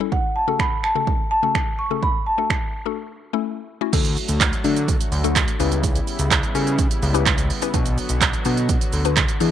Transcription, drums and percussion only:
0.12 kick loud
0.59 finger snap loud
0.59 kick loud
0.84 finger snap medium
1.07 kick loud
1.55 finger snap loud
1.55 kick loud
2.03 kick loud
2.50 finger snap loud
2.50 kick loud
3.93 kick loud
3.93 closed hi-hat medium
3.93 crash loud
3.93 shaker medium
4.05 closed hi-hat medium
4.05 shaker medium
4.17 open hi-hat medium
4.17 shaker soft
4.28 closed hi-hat medium
4.28 shaker medium
4.40 kick loud
4.40 clap loud
4.40 closed hi-hat medium
4.40 shaker medium
4.53 closed hi-hat soft
4.53 shaker soft
4.64 open hi-hat medium
4.64 shaker medium
4.77 closed hi-hat soft
4.77 shaker medium
4.88 kick loud
4.88 closed hi-hat medium
4.88 shaker medium
5.01 closed hi-hat medium
5.01 shaker medium
5.12 open hi-hat medium
5.12 shaker medium
5.24 closed hi-hat soft
5.24 shaker medium
5.36 kick loud
5.36 clap loud
5.36 closed hi-hat medium
5.36 shaker medium
5.48 closed hi-hat medium
5.48 shaker medium
5.60 open hi-hat medium
5.60 shaker medium
5.72 closed hi-hat medium
5.72 shaker medium
5.84 kick loud
5.84 closed hi-hat medium
5.84 shaker medium
5.96 closed hi-hat medium
5.96 shaker medium
6.07 open hi-hat medium
6.07 shaker medium
6.19 closed hi-hat medium
6.19 shaker medium
6.31 kick loud
6.31 clap loud
6.31 closed hi-hat medium
6.31 shaker medium
6.43 closed hi-hat soft
6.43 shaker soft
6.55 open hi-hat medium
6.55 shaker medium
6.67 closed hi-hat soft
6.67 shaker medium
6.79 kick loud
6.79 closed hi-hat medium
6.79 shaker medium
6.91 closed hi-hat medium
6.91 shaker medium
7.03 open hi-hat medium
7.03 shaker medium
7.15 closed hi-hat soft
7.15 shaker medium
7.26 kick loud
7.26 clap loud
7.26 closed hi-hat medium
7.26 shaker medium
7.38 closed hi-hat medium
7.38 shaker medium
7.50 open hi-hat medium
7.50 shaker medium
7.62 closed hi-hat medium
7.62 shaker medium
7.74 kick loud
7.74 closed hi-hat medium
7.74 shaker medium
7.86 closed hi-hat medium
7.86 shaker medium
7.98 open hi-hat medium
7.98 shaker medium
8.09 closed hi-hat medium
8.09 shaker medium
8.21 kick loud
8.21 clap loud
8.21 closed hi-hat medium
8.21 shaker medium
8.33 closed hi-hat soft
8.33 shaker medium
8.45 open hi-hat medium
8.45 shaker medium
8.57 closed hi-hat medium
8.57 shaker medium
8.69 kick loud
8.69 closed hi-hat medium
8.69 shaker medium
8.81 closed hi-hat medium
8.81 shaker medium
8.93 open hi-hat medium
8.93 shaker medium
9.05 closed hi-hat medium
9.05 shaker medium
9.17 kick loud
9.17 clap loud
9.17 closed hi-hat medium
9.17 shaker medium
9.28 closed hi-hat medium
9.28 shaker medium
9.40 open hi-hat medium
9.40 shaker medium

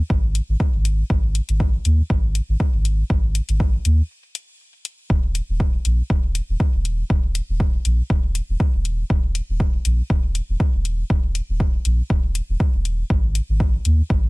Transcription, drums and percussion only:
0.10 kick loud
0.35 closed hi-hat medium
0.60 kick loud
0.85 closed hi-hat medium
1.10 kick loud
1.35 closed hi-hat medium
1.49 closed hi-hat soft
1.60 kick loud
1.85 closed hi-hat medium
2.10 kick loud
2.35 closed hi-hat medium
2.60 kick loud
2.85 closed hi-hat medium
3.10 kick loud
3.35 closed hi-hat medium
3.49 closed hi-hat soft
3.60 kick loud
3.85 closed hi-hat medium
4.35 closed hi-hat medium
4.85 closed hi-hat medium
5.10 kick loud
5.35 closed hi-hat medium
5.60 kick loud
5.85 closed hi-hat medium
6.10 kick loud
6.35 closed hi-hat medium
6.60 kick loud
6.85 closed hi-hat medium
7.10 kick loud
7.35 closed hi-hat medium
7.60 kick loud
7.85 closed hi-hat medium
8.10 kick loud
8.35 closed hi-hat medium
8.60 kick loud
8.85 closed hi-hat medium
9.10 kick loud
9.35 closed hi-hat medium
9.60 kick loud
9.85 closed hi-hat medium
10.10 kick loud
10.35 closed hi-hat medium
10.60 kick loud
10.85 closed hi-hat medium
11.10 kick loud
11.35 closed hi-hat medium
11.60 kick loud
11.85 closed hi-hat medium
12.10 kick loud
12.35 closed hi-hat medium
12.60 kick loud
12.85 closed hi-hat medium
13.10 kick loud
13.35 closed hi-hat medium
13.60 kick loud
13.85 closed hi-hat medium
14.10 kick loud

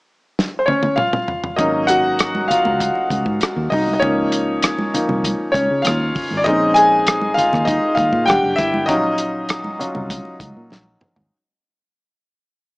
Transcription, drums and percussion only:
0.39 snare medium
0.68 high tom medium
0.83 high tom medium
0.98 mid tom medium
1.13 mid tom medium
1.28 floor tom medium
1.44 floor tom medium
1.59 kick medium
1.59 closed hi-hat medium
1.88 closed hi-hat medium
2.19 cross-stick loud
2.19 closed hi-hat medium
2.35 muted conga soft
2.35 high conga medium
2.50 closed hi-hat medium
2.50 low conga medium
2.65 low conga medium
2.80 kick medium
2.80 closed hi-hat medium
2.80 high conga medium
2.95 muted conga soft
3.10 kick medium
3.10 closed hi-hat medium
3.10 high conga medium
3.26 kick medium
3.40 cross-stick medium
3.40 closed hi-hat medium
3.40 high conga medium
3.72 kick medium
3.72 open hi-hat soft
3.72 low conga soft
3.88 high conga medium
4.02 kick medium
4.02 closed hi-hat medium
4.02 muted conga soft
4.32 closed hi-hat medium
4.62 cross-stick loud
4.62 closed hi-hat medium
4.79 muted conga soft
4.79 high conga medium
4.94 closed hi-hat medium
4.94 low conga medium
5.09 low conga medium
5.24 kick medium
5.24 closed hi-hat medium
5.24 muted conga soft
5.24 high conga medium
5.54 kick medium
5.54 closed hi-hat medium
5.54 high conga medium
5.84 cross-stick medium
5.84 closed hi-hat medium
5.84 high conga medium
6.00 muted conga soft
6.15 kick medium
6.15 open hi-hat medium
6.15 low conga medium
6.31 high conga medium
6.46 kick loud
6.46 closed hi-hat medium
6.76 closed hi-hat medium
7.07 cross-stick loud
7.07 closed hi-hat medium
7.22 muted conga soft
7.22 high conga medium
7.38 closed hi-hat medium
7.38 low conga medium
7.53 cross-stick soft
7.53 low conga medium
7.68 kick medium
7.68 closed hi-hat medium
7.68 high conga medium
7.97 kick loud
7.97 closed hi-hat medium
7.97 high conga medium
8.13 kick medium
8.27 cross-stick medium
8.27 closed hi-hat medium
8.27 muted conga soft
8.27 high conga medium
8.43 muted conga soft
8.58 kick medium
8.58 closed hi-hat medium
8.58 low conga soft
8.74 high conga medium
8.89 kick loud
8.89 closed hi-hat medium
9.04 muted conga soft
9.18 closed hi-hat medium
9.49 cross-stick loud
9.49 closed hi-hat medium
9.64 muted conga soft
9.64 high conga medium
9.80 closed hi-hat medium
9.80 low conga medium
9.95 low conga medium
10.10 kick medium
10.10 closed hi-hat loud
10.10 high conga medium
10.25 muted conga soft
10.40 kick medium
10.40 closed hi-hat medium
10.40 high conga medium
10.70 snare soft
10.70 muted conga soft
10.70 high conga medium
10.86 muted conga soft
11.01 mid tom medium
11.01 low conga medium
11.16 floor tom medium
11.16 high conga medium

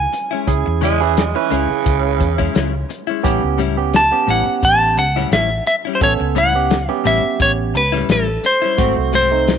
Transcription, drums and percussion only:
0.13 closed hi-hat medium
0.47 kick loud
0.47 closed hi-hat medium
0.82 closed hi-hat medium
1.17 snare loud
1.17 closed hi-hat medium
1.51 closed hi-hat medium
1.86 kick loud
1.86 closed hi-hat medium
2.20 kick medium
2.20 closed hi-hat medium
2.39 kick medium
2.55 snare loud
2.55 closed hi-hat medium
2.90 closed hi-hat medium
3.25 kick loud
3.25 closed hi-hat medium
3.59 closed hi-hat medium
3.94 snare loud
3.94 closed hi-hat medium
4.28 closed hi-hat medium
4.63 kick loud
4.63 closed hi-hat medium
4.97 closed hi-hat medium
5.18 snare soft
5.32 snare loud
5.32 closed hi-hat medium
5.67 closed hi-hat medium
6.01 kick loud
6.01 closed hi-hat medium
6.36 closed hi-hat medium
6.70 snare loud
6.70 closed hi-hat medium
7.05 closed hi-hat medium
7.40 kick loud
7.40 closed hi-hat medium
7.75 closed hi-hat medium
7.94 snare soft
8.09 snare loud
8.09 closed hi-hat medium
8.44 closed hi-hat medium
8.78 kick loud
8.78 closed hi-hat medium
9.13 closed hi-hat medium
9.48 snare loud
9.48 closed hi-hat medium

